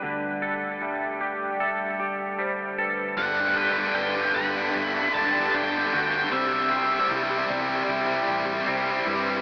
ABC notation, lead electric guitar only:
X:1
M:4/4
L:1/16
Q:1/4=76
K:G
V:1 name="Lead electric guitar"
z16 | f2 g2 g2 b4 a2 g3 g | e4 z12 |]